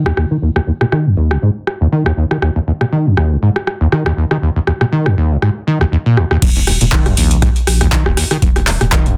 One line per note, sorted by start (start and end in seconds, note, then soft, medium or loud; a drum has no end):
0.06 0.12 D#2 medium
0.06 cross-stick medium
0.17 0.25 D#2 medium
0.17 cross-stick medium
0.31 0.37 D#3 medium
0.42 0.50 D#2 medium
0.56 0.60 D#2 medium
0.56 cross-stick medium
0.67 0.72 D#2 medium
0.81 0.85 A#2 medium
0.81 cross-stick medium
0.92 1.07 D#3 medium
0.92 cross-stick medium
1.06 1.15 F#2 medium
1.17 1.32 D#2 medium
1.31 1.37 C#2 medium
1.31 cross-stick medium
1.42 1.50 G#2 medium
1.67 cross-stick medium
1.81 1.87 D#2 loud
1.92 2.04 D#3 loud
2.06 2.12 D#2 medium
2.06 cross-stick medium
2.17 2.25 D#2 medium
2.31 2.37 D#3 medium
2.31 cross-stick medium
2.42 2.50 D#2 medium
2.42 cross-stick medium
2.56 2.60 D#2 medium
2.67 2.72 D#2 medium
2.81 2.85 A#2 medium
2.81 cross-stick medium
2.92 3.07 D#3 medium
3.06 3.15 F#2 loud
3.17 3.32 D#2 medium
3.17 cross-stick medium
3.31 3.37 C#2 medium
3.42 3.50 G#2 medium
3.56 cross-stick medium
3.67 cross-stick medium
3.81 3.87 D#2 loud
3.92 4.04 D#3 loud
3.92 cross-stick medium
4.06 4.12 D#2 medium
4.06 cross-stick medium
4.17 4.25 D#2 medium
4.31 4.37 D#3 medium
4.31 cross-stick medium
4.42 4.50 D#2 medium
4.56 4.60 D#2 medium
4.67 4.72 D#2 medium
4.67 cross-stick medium
4.81 4.85 A#2 medium
4.81 cross-stick medium
4.92 5.07 D#3 loud
5.06 5.15 F#2 loud
5.06 cross-stick medium
5.17 5.32 D#2 medium
5.31 5.37 C#2 medium
5.42 5.50 G#2 medium
5.42 cross-stick medium
5.67 5.79 D#3 loud
5.81 5.85 D#2 loud
5.81 cross-stick medium
5.92 5.97 D#2 medium
6.06 6.19 A#2 medium
6.17 6.25 D#2 medium
6.17 cross-stick medium
6.31 6.37 D#2 medium
6.31 cross-stick medium
6.42 6.77 D#1 loud
6.42 6.50 D#2 medium
6.42 kick loud
6.42 closed hi-hat medium
6.42 crash loud
6.56 6.60 D#2 medium
6.56 closed hi-hat soft
6.67 6.72 D#2 medium
6.67 cross-stick medium
6.67 open hi-hat loud
6.81 7.14 D#1 medium
6.81 6.85 A#2 medium
6.81 closed hi-hat medium
6.92 7.07 D#3 loud
6.92 kick loud
6.92 clap loud
6.92 closed hi-hat medium
7.06 7.15 F#2 loud
7.06 cross-stick medium
7.06 closed hi-hat soft
7.17 7.52 A#1 medium
7.17 7.32 D#2 medium
7.17 open hi-hat loud
7.31 7.37 C#2 medium
7.31 closed hi-hat medium
7.42 7.50 G#2 medium
7.42 kick loud
7.42 cross-stick medium
7.42 closed hi-hat medium
7.56 closed hi-hat soft
7.67 8.02 A#1 medium
7.67 cross-stick medium
7.67 open hi-hat loud
7.81 7.87 D#2 loud
7.81 cross-stick medium
7.81 closed hi-hat medium
7.92 8.04 D#3 loud
7.92 kick loud
7.92 clap loud
7.92 closed hi-hat medium
8.06 8.15 D#1 loud
8.06 8.12 D#2 medium
8.06 cross-stick medium
8.17 8.25 D#2 medium
8.17 cross-stick medium
8.17 open hi-hat loud
8.31 8.37 D#3 medium
8.31 cross-stick medium
8.31 closed hi-hat medium
8.42 8.77 D#1 loud
8.42 8.50 D#2 medium
8.42 kick loud
8.42 closed hi-hat medium
8.56 8.60 D#2 medium
8.56 cross-stick medium
8.56 closed hi-hat soft
8.67 8.72 D#2 medium
8.67 clap medium
8.67 open hi-hat loud
8.81 9.14 D#1 medium
8.81 8.85 A#2 medium
8.81 cross-stick medium
8.81 closed hi-hat medium
8.92 9.08 D#3 loud
8.92 kick loud
8.92 cross-stick medium
8.92 clap loud
8.92 closed hi-hat medium
9.06 9.15 F#2 loud
9.06 closed hi-hat soft